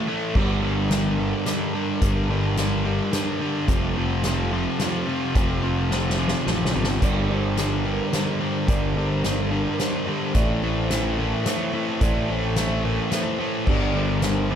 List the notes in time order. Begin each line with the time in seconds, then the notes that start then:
Already playing: E3 C4 A4
0.08 A2 E3 A3
0.35 G1 G2 D3 G3 D4 A#4, kick, crash
0.63 G2 D3 G3
0.91 G2 D3 G3, snare, closed hi-hat
1.19 G2 D3 G3
1.46 G2 D3 G3, snare, closed hi-hat
1.74 G2 D3 G3
2.02 G1 G2 D3 G3, kick, closed hi-hat
2.30 G2 D3 G3
2.57 G2 D3 G3, snare, closed hi-hat
2.85 G2 D3 G3
3.13 G2 D3 G3, snare, closed hi-hat
3.41 G2 D3 G3
3.68 F1 F2 C3 F3 G3 F4 A4, kick, closed hi-hat
3.97 F2 C3 F3
4.24 F2 C3 F3, snare, closed hi-hat
4.52 F2 C3 F3
4.80 F2 C3 F3, snare, closed hi-hat
5.08 F2 C3 F3
5.35 F1 F2 C3 F3, kick, closed hi-hat
5.63 F2 C3 F3
5.91 F2 C3 F3, snare
6.10 snare
6.18 F2 C3 F3
6.28 snare
6.47 A1 F2 C3 F3, snare
6.65 snare
6.74 G1 F2 C3 F3
6.84 snare
7.02 G1 G2 D3 G3 D4 A#4 D5, kick, closed hi-hat, crash
7.29 G2 D3 G3 C5
7.57 G2 D3 G3, snare, closed hi-hat
7.85 G2 D3 G3 A#4
8.13 G2 D3 G3 C5, snare, closed hi-hat
8.41 G2 D3 G3
8.68 G1 G2 D3 G3 D5, kick, closed hi-hat
8.96 G2 D3 G3 C5
9.24 G2 D3 G3, snare, closed hi-hat
9.51 G2 D3 G3 A#4
9.79 G2 D3 G3 C5, snare, closed hi-hat
10.07 G2 D3 G3
10.34 A1 A2 E3 A3 C4 A4 D5, kick, closed hi-hat
10.63 A2 E3 A3 C5
10.91 A2 E3 A3, snare, closed hi-hat
11.18 A2 E3 A3 A#4
11.46 A2 E3 A3 C5, snare, closed hi-hat
11.73 A2 E3 A3
12.01 A1 A2 E3 A3 D5, kick, closed hi-hat
12.29 A2 E3 A3 C5
12.56 A2 E3 A3, snare, closed hi-hat
12.84 A2 E3 A3 A#4
13.12 A2 E3 A3 C5, snare, closed hi-hat
13.39 A2 E3 A3
13.67 G1 G2 D3 G3 D4 A#4 D5, kick, crash
13.94 G2 D3 G3 C5
14.22 G2 D3 G3, snare, closed hi-hat
14.50 G2 D3 G3 A#4